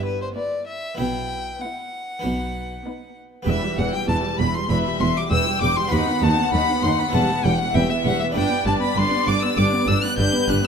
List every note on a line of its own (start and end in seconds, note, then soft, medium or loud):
0.00 0.25 G1 medium
0.00 0.24 G2 medium
0.00 0.24 G2 soft
0.00 0.94 B3 soft
0.00 0.94 E4 soft
0.00 0.95 B4 soft
0.06 0.21 B4 medium
0.22 0.28 C5 medium
0.35 0.84 B3 medium
0.35 0.84 E4 medium
0.35 0.84 B4 medium
0.35 0.67 D5 medium
0.67 0.98 E5 medium
0.95 2.18 B3 soft
0.95 2.18 E4 soft
0.95 2.19 B4 soft
0.99 1.49 B1 medium
0.99 1.48 B2 medium
0.99 1.48 B2 soft
0.99 1.63 G5 medium
1.61 2.08 B3 medium
1.61 2.08 E4 medium
1.61 2.08 B4 medium
1.61 3.17 F#5 medium
2.19 2.73 B1 medium
2.19 3.41 B3 soft
2.19 3.43 D#4 soft
2.19 3.43 B4 soft
2.24 2.73 B2 medium
2.24 2.73 B2 soft
2.85 3.32 B3 medium
2.85 3.32 D#4 medium
2.85 3.32 B4 medium
3.43 5.86 B3 medium
3.43 5.87 G4 medium
3.43 5.87 B4 medium
3.47 3.55 E1 medium
3.47 3.55 E2 medium
3.47 3.75 E2 medium
3.47 3.62 E3 medium
3.47 3.76 E5 loud
3.47 3.80 E5 medium
3.63 3.79 G3 medium
3.78 3.86 E1 medium
3.78 4.06 E2 medium
3.78 3.86 E2 medium
3.78 3.94 E3 medium
3.78 3.93 F#5 loud
3.78 3.92 F#5 medium
3.93 4.09 G3 medium
3.93 4.08 G5 medium
3.93 4.10 G5 medium
4.08 4.17 E1 medium
4.08 4.36 E2 medium
4.08 4.16 E2 medium
4.08 4.23 E3 medium
4.08 4.17 A5 medium
4.08 4.39 A5 loud
4.24 4.40 G3 medium
4.39 4.48 E1 medium
4.39 4.47 E2 medium
4.39 4.67 E2 medium
4.39 4.55 E3 medium
4.39 4.55 B5 loud
4.39 4.55 B5 medium
4.54 4.70 G3 medium
4.54 4.69 C6 medium
4.54 4.70 C6 medium
4.69 4.78 E1 medium
4.69 4.77 E2 medium
4.69 4.97 E2 medium
4.69 4.84 E3 medium
4.69 5.28 E5 medium
4.69 4.77 B5 medium
4.69 5.01 B5 loud
4.85 5.01 G3 medium
5.00 5.09 E1 medium
5.00 5.08 E2 medium
5.00 5.28 E2 medium
5.00 5.16 E3 medium
5.00 5.06 C6 medium
5.00 5.16 C6 loud
5.17 5.32 G3 medium
5.17 5.23 D6 medium
5.17 5.32 D6 medium
5.31 5.40 E1 medium
5.31 5.39 E2 medium
5.31 5.59 E2 medium
5.31 5.46 E3 medium
5.31 5.91 G5 medium
5.31 5.61 E6 medium
5.31 5.61 E6 loud
5.46 5.62 G3 medium
5.61 5.70 E1 medium
5.61 5.89 E2 medium
5.61 5.70 E2 medium
5.61 5.77 E3 medium
5.61 5.78 D6 medium
5.61 5.77 D6 loud
5.77 5.92 G3 medium
5.77 5.93 C6 medium
5.77 5.92 C6 loud
5.87 6.19 D#2 medium
5.87 7.08 B3 medium
5.87 7.09 F#4 medium
5.87 7.09 B4 medium
5.92 6.00 D#2 medium
5.92 6.06 D#4 medium
5.92 7.72 F#5 loud
5.92 6.25 B5 medium
5.92 6.23 B5 loud
6.07 6.22 B3 medium
6.22 6.50 D#2 medium
6.22 6.30 D#2 medium
6.22 6.38 D#4 medium
6.22 6.53 A5 loud
6.22 6.53 A5 medium
6.37 6.53 B3 medium
6.52 6.60 D#2 medium
6.52 6.80 D#2 medium
6.52 6.61 D#2 medium
6.52 6.67 D#4 medium
6.52 6.83 B5 loud
6.52 6.84 B5 medium
6.69 6.84 B3 medium
6.83 7.11 D#2 medium
6.83 6.91 D#2 medium
6.83 6.92 D#2 medium
6.83 6.99 D#4 medium
6.83 7.01 C6 medium
6.83 6.89 C6 loud
6.99 7.14 B3 medium
6.99 7.14 B5 medium
7.09 8.29 B3 medium
7.09 8.30 E4 medium
7.09 8.31 B4 medium
7.13 7.23 E1 medium
7.13 7.41 E2 medium
7.13 7.21 E2 medium
7.13 7.29 G3 medium
7.13 7.22 A5 medium
7.13 7.46 A5 medium
7.30 7.45 B3 medium
7.44 7.53 E1 medium
7.44 7.52 E2 medium
7.44 7.72 E2 medium
7.44 7.60 G3 medium
7.44 7.60 G5 medium
7.44 7.61 G5 medium
7.59 7.75 B3 medium
7.59 7.77 F#5 medium
7.59 7.75 F#5 medium
7.74 7.83 E1 medium
7.74 8.02 E2 medium
7.74 7.83 E2 medium
7.74 7.89 G3 medium
7.74 8.35 E5 medium
7.74 7.81 G5 loud
7.74 7.90 G5 medium
7.90 8.06 B3 medium
7.90 7.96 E5 medium
7.90 8.05 E5 medium
8.04 8.12 E1 medium
8.04 8.32 E2 medium
8.04 8.13 E2 medium
8.04 8.21 G3 medium
8.04 8.20 F#5 loud
8.04 8.20 F#5 medium
8.20 8.36 B3 medium
8.20 8.26 E5 medium
8.20 8.36 E5 medium
8.31 10.67 B3 medium
8.31 10.67 D4 medium
8.31 10.67 B4 medium
8.31 10.14 D5 loud
8.35 8.43 G1 medium
8.35 8.63 G2 medium
8.35 8.44 G2 medium
8.35 8.50 D4 medium
8.35 8.65 G5 loud
8.35 8.65 G5 medium
8.51 8.66 B3 medium
8.66 8.74 G1 medium
8.66 8.93 G2 medium
8.66 8.74 G2 medium
8.66 8.82 D4 medium
8.66 8.81 A5 loud
8.66 8.73 A5 medium
8.81 8.97 B3 medium
8.81 8.96 B5 loud
8.81 8.99 B5 medium
8.96 9.04 G1 medium
8.96 9.24 G2 medium
8.96 9.05 G2 medium
8.96 9.11 D4 medium
8.96 9.27 C6 loud
8.96 9.30 C6 loud
9.11 9.27 B3 medium
9.26 9.35 G1 medium
9.26 9.54 G2 medium
9.26 9.35 G2 medium
9.26 9.42 D4 medium
9.26 9.42 D6 loud
9.26 9.44 D6 medium
9.42 9.57 B3 medium
9.42 9.58 E6 loud
9.42 9.60 E6 medium
9.57 9.65 G1 medium
9.57 9.84 G2 medium
9.57 9.65 G2 medium
9.57 9.72 D4 medium
9.57 9.65 D6 loud
9.57 9.89 D6 medium
9.73 9.88 B3 medium
9.87 9.95 G1 medium
9.87 10.15 G2 medium
9.87 9.96 G2 medium
9.87 10.03 D4 medium
9.87 10.03 E6 loud
9.87 10.05 E6 medium
10.03 10.18 B3 medium
10.03 10.18 F#6 loud
10.03 10.18 F#6 medium
10.18 10.26 G1 medium
10.18 10.45 G2 medium
10.18 10.26 G2 medium
10.18 10.33 D4 medium
10.18 10.67 B4 medium
10.18 10.48 G6 loud
10.18 10.50 G6 loud
10.34 10.49 B3 medium
10.48 10.56 G1 medium
10.48 10.67 G2 medium
10.48 10.57 G2 medium
10.48 10.64 D4 medium
10.48 10.55 F#6 loud
10.48 10.66 F#6 loud